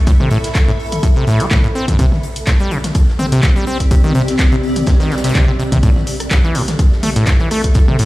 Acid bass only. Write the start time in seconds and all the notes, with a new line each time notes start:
0.07 A2
0.20 C3
0.31 A2
0.68 A2
1.03 A2
1.16 C3
1.27 A2
1.40 A3
1.51 A2
1.64 A2
1.75 C4
1.88 G2
1.99 C3
2.47 A#2
2.60 G3
2.71 C3
3.19 C4
3.32 C3
3.43 A#2
3.56 G3
3.67 C4
3.91 C3
4.04 D#3
4.15 C3
4.52 C3
4.87 C3
5.00 D#3
5.11 C3
5.24 C3
5.35 C3
5.48 C3
5.59 C3
5.72 C3
5.83 A2
6.31 G2
6.44 E3
6.55 A2
7.03 A3
7.16 A2
7.40 E3
7.51 A3
7.75 A2
7.88 C3
7.99 A2